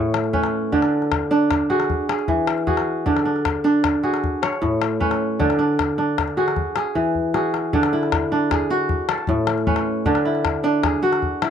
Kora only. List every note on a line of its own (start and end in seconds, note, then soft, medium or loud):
0.00 0.77 A2 medium
0.00 0.82 F#4 medium
0.00 0.78 C#5 medium
0.33 0.78 C#4 medium
0.33 1.56 B4 medium
0.72 1.95 D3 medium
0.72 1.30 D4 medium
1.31 2.99 D4 medium
1.70 2.66 F#4 medium
1.70 2.09 G#4 medium
2.09 2.67 G#4 medium
2.28 3.11 E3 medium
2.67 4.03 F#4 medium
2.67 4.03 G#4 medium
3.06 4.28 D3 medium
3.06 3.25 D4 medium
3.25 3.64 D4 medium
3.64 4.48 D4 medium
4.03 5.50 F#4 medium
4.03 4.68 G#4 medium
4.42 5.46 C#5 medium
4.62 5.45 A2 medium
5.00 5.46 C#4 medium
5.00 6.23 B4 medium
5.40 6.62 D3 medium
5.40 5.58 D4 medium
5.59 5.98 D4 medium
5.98 7.66 D4 medium
6.37 7.34 F#4 medium
6.37 6.76 G#4 medium
6.76 7.34 G#4 medium
6.95 7.78 E3 medium
7.34 8.70 F#4 medium
7.34 8.51 G#4 medium
7.73 8.95 D3 medium
7.73 8.31 D4 medium
7.93 9.50 E4 medium
8.32 9.73 D4 medium
8.51 9.15 G#4 medium
8.71 10.17 F#4 medium
9.09 10.41 A4 medium
9.29 10.11 A2 medium
9.67 10.12 C#4 medium
9.67 10.90 B4 medium
10.06 11.28 D3 medium
10.06 10.63 D4 medium
10.25 11.42 E4 medium
10.64 11.50 D4 medium
10.83 11.50 G#4 medium
11.03 11.50 F#4 medium
11.42 11.50 E4 medium